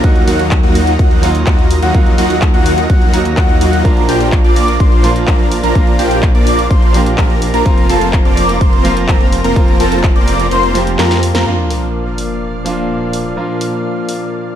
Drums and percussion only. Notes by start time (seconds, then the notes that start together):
0.04 kick, closed hi-hat
0.16 closed hi-hat
0.28 open hi-hat
0.39 closed hi-hat
0.51 kick, clap, closed hi-hat
0.63 closed hi-hat
0.75 open hi-hat
0.87 closed hi-hat
0.99 kick, closed hi-hat
1.11 closed hi-hat
1.23 open hi-hat
1.35 closed hi-hat
1.46 kick, clap, closed hi-hat
1.59 closed hi-hat
1.71 open hi-hat
1.83 closed hi-hat
1.94 kick, closed hi-hat
2.06 closed hi-hat
2.18 open hi-hat
2.30 closed hi-hat
2.42 kick, clap, closed hi-hat
2.54 closed hi-hat
2.66 open hi-hat
2.78 closed hi-hat
2.90 kick, closed hi-hat
3.02 closed hi-hat
3.14 open hi-hat
3.25 closed hi-hat
3.37 kick, clap, closed hi-hat
3.49 closed hi-hat
3.61 open hi-hat
3.73 closed hi-hat
3.85 kick, closed hi-hat
3.97 closed hi-hat
4.09 open hi-hat
4.21 closed hi-hat
4.32 kick, clap, closed hi-hat
4.44 closed hi-hat
4.56 open hi-hat
4.68 closed hi-hat
4.80 kick, closed hi-hat
4.92 closed hi-hat
5.04 open hi-hat
5.16 closed hi-hat
5.27 kick, clap, closed hi-hat
5.40 closed hi-hat
5.52 open hi-hat
5.64 closed hi-hat
5.75 kick, closed hi-hat
5.87 closed hi-hat
5.99 open hi-hat
6.11 closed hi-hat
6.23 kick, clap, closed hi-hat
6.35 closed hi-hat
6.47 open hi-hat
6.59 closed hi-hat
6.71 kick, closed hi-hat
6.83 closed hi-hat
6.94 open hi-hat
7.06 closed hi-hat
7.18 kick, clap, closed hi-hat
7.30 closed hi-hat
7.42 open hi-hat
7.54 closed hi-hat
7.66 kick, closed hi-hat
7.78 closed hi-hat
7.89 open hi-hat
8.01 closed hi-hat
8.13 kick, clap, closed hi-hat
8.25 closed hi-hat
8.37 open hi-hat
8.49 closed hi-hat
8.61 kick, closed hi-hat
8.73 closed hi-hat
8.85 open hi-hat
8.97 closed hi-hat
9.08 kick, clap, closed hi-hat
9.21 closed hi-hat
9.32 open hi-hat
9.44 closed hi-hat
9.56 kick, closed hi-hat
9.68 closed hi-hat
9.80 open hi-hat
9.92 closed hi-hat
10.04 kick, clap, closed hi-hat
10.16 closed hi-hat
10.28 open hi-hat
10.40 closed hi-hat
10.51 closed hi-hat
10.63 closed hi-hat
10.75 open hi-hat
10.87 closed hi-hat
10.99 snare, clap, closed hi-hat
11.11 snare, closed hi-hat
11.23 open hi-hat
11.35 snare, closed hi-hat
11.70 open hi-hat
12.18 open hi-hat
12.66 open hi-hat
13.13 open hi-hat
13.61 open hi-hat
14.09 open hi-hat